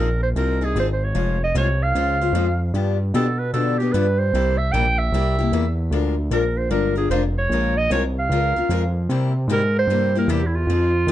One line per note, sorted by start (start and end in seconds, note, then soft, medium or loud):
0.00 0.34 A#1 medium
0.00 0.20 A#4 medium
0.23 0.29 C5 medium
0.36 0.74 C2 medium
0.36 0.58 F3 medium
0.36 0.58 C4 medium
0.36 0.58 D#4 medium
0.36 0.58 G#4 medium
0.36 0.66 A#4 medium
0.61 0.76 C4 soft
0.61 0.75 D#4 soft
0.61 0.75 G#4 soft
0.61 0.77 G#4 medium
0.75 1.14 G#1 medium
0.75 0.87 F3 medium
0.75 0.88 C4 medium
0.75 0.88 D#4 medium
0.75 0.88 G#4 medium
0.80 0.86 C5 medium
0.93 1.06 C5 medium
1.04 1.42 C#5 medium
1.15 1.54 F1 medium
1.15 1.37 F3 medium
1.15 1.37 G#3 medium
1.15 1.37 C#4 medium
1.15 1.37 F4 medium
1.15 1.37 C5 medium
1.44 1.56 D#5 medium
1.55 1.93 C2 medium
1.55 1.67 F3 medium
1.55 1.67 G#3 medium
1.55 1.67 C#4 medium
1.55 1.67 F4 medium
1.55 1.67 C5 medium
1.55 1.84 C#5 loud
1.83 2.61 F5 medium
1.95 2.32 C#2 medium
1.95 2.17 F3 medium
1.95 2.17 G#3 medium
1.95 2.17 C#4 medium
1.95 2.17 F4 medium
1.95 2.17 C5 medium
2.21 2.34 C#4 soft
2.21 2.34 F4 medium
2.21 2.34 C5 medium
2.33 2.72 F2 medium
2.33 2.46 F3 medium
2.33 2.46 G#3 medium
2.33 2.46 C#4 medium
2.33 2.46 F4 medium
2.33 2.46 C5 medium
2.74 3.13 G2 medium
2.74 2.96 D3 medium
2.74 2.96 F3 medium
2.74 2.96 B3 medium
2.74 2.97 D4 medium
2.74 2.97 G4 medium
3.14 3.53 B2 medium
3.14 3.26 D3 medium
3.14 3.26 F3 medium
3.14 3.26 B3 medium
3.14 3.26 D4 medium
3.14 3.26 G4 medium
3.14 3.40 A4 medium
3.39 3.53 B4 medium
3.53 3.92 B2 medium
3.53 3.76 D3 medium
3.53 3.76 F3 medium
3.53 3.76 B3 medium
3.53 3.76 D4 medium
3.53 3.76 G4 medium
3.53 3.80 A4 medium
3.78 3.93 B3 soft
3.78 3.94 D4 soft
3.78 3.94 G4 medium
3.78 3.93 G4 medium
3.93 4.32 G2 medium
3.93 4.05 D3 medium
3.93 4.05 F3 medium
3.93 4.06 B3 medium
3.93 4.06 D4 medium
3.93 4.06 G4 medium
3.93 4.20 B4 medium
4.19 4.59 C5 loud
4.33 4.72 C2 medium
4.33 4.56 C3 medium
4.33 4.56 G3 medium
4.33 4.56 A#3 medium
4.33 4.56 E4 medium
4.33 4.56 G4 medium
4.57 4.74 E5 medium
4.72 5.11 A#1 medium
4.72 4.85 C3 medium
4.72 4.85 G3 medium
4.72 4.85 A#3 medium
4.72 4.85 E4 medium
4.72 4.85 G4 medium
4.72 5.00 G5 loud
4.99 5.78 E5 medium
5.12 5.51 C2 medium
5.12 5.35 C3 medium
5.12 5.35 G3 medium
5.12 5.35 A#3 medium
5.12 5.35 E4 medium
5.12 5.36 G4 medium
5.39 5.52 A#3 soft
5.39 5.52 E4 soft
5.39 5.52 G4 medium
5.52 5.90 E2 medium
5.52 5.64 C3 medium
5.52 5.64 G3 medium
5.52 5.64 A#3 medium
5.52 5.65 E4 medium
5.52 5.64 G4 medium
5.91 6.30 D2 medium
5.91 6.14 F3 medium
5.91 6.14 G#3 medium
5.91 6.14 D4 medium
5.91 6.14 F4 medium
5.91 6.14 A#4 medium
6.31 6.69 A#1 medium
6.31 6.43 F3 medium
6.31 6.43 G#3 medium
6.31 6.43 D4 medium
6.31 6.43 F4 medium
6.31 6.43 A#4 medium
6.31 6.59 A#4 medium
6.58 6.70 C5 medium
6.70 7.09 G1 medium
6.70 6.93 F3 medium
6.70 6.93 G#3 medium
6.70 6.93 D4 medium
6.70 6.93 F4 medium
6.70 6.95 A#4 medium
6.70 6.93 A#4 medium
6.96 7.10 D4 soft
6.96 7.10 F4 soft
6.96 7.10 G#4 medium
6.96 7.10 A#4 medium
7.09 7.49 F1 medium
7.09 7.23 F3 medium
7.09 7.23 G#3 medium
7.09 7.23 D4 medium
7.09 7.23 F4 medium
7.09 7.23 A#4 medium
7.09 7.22 C5 medium
7.38 7.79 C#5 medium
7.49 7.89 A#1 medium
7.49 7.73 F3 medium
7.49 7.73 G#3 medium
7.49 7.73 C#4 medium
7.49 7.74 F4 medium
7.49 7.74 A#4 medium
7.77 7.91 D#5 loud
7.90 8.29 C2 medium
7.90 8.02 F3 medium
7.90 8.02 G#3 medium
7.90 8.03 C#4 medium
7.90 8.03 F4 medium
7.90 8.03 A#4 loud
7.90 8.03 C#5 loud
8.19 8.93 F5 loud
8.29 8.53 C#2 medium
8.29 8.53 F3 medium
8.29 8.53 G#3 medium
8.29 8.53 C#4 medium
8.29 8.53 F4 medium
8.29 8.53 A#4 medium
8.56 8.69 C#4 soft
8.56 8.70 F4 medium
8.56 8.70 A#4 medium
8.69 9.08 F2 medium
8.69 8.82 F3 medium
8.69 8.82 G#3 medium
8.69 8.82 C#4 medium
8.69 8.82 F4 medium
8.69 8.82 A#4 medium
9.09 9.47 C3 medium
9.09 9.31 C3 medium
9.09 9.32 G3 medium
9.09 9.32 A#3 medium
9.09 9.32 E4 medium
9.09 9.32 G4 medium
9.48 9.87 G#2 medium
9.48 9.61 C3 medium
9.48 9.61 G3 medium
9.48 9.61 A#3 medium
9.48 9.61 E4 medium
9.48 9.61 G4 medium
9.53 9.75 A#4 loud
9.79 10.14 C5 loud
9.87 10.27 G2 medium
9.87 10.11 C3 medium
9.87 10.11 G3 medium
9.87 10.11 A#3 medium
9.87 10.12 E4 medium
9.87 10.12 G4 medium
10.15 10.28 A#3 soft
10.15 10.28 E4 medium
10.15 10.29 G4 medium
10.15 10.32 A#4 medium
10.28 10.66 E2 medium
10.28 10.40 C3 medium
10.28 10.41 G3 medium
10.28 10.40 A#3 medium
10.28 10.41 E4 medium
10.28 10.41 G4 medium
10.28 10.48 G4 medium
10.46 10.57 E4 medium
10.55 11.12 F4 medium
10.67 11.06 F2 medium
10.67 10.91 F3 medium
10.67 10.90 C4 medium
10.67 10.91 D#4 medium
10.67 10.91 G#4 medium
11.07 11.12 D#2 medium
11.07 11.12 F3 medium
11.07 11.12 C4 medium
11.07 11.12 D#4 loud
11.07 11.12 G#4 medium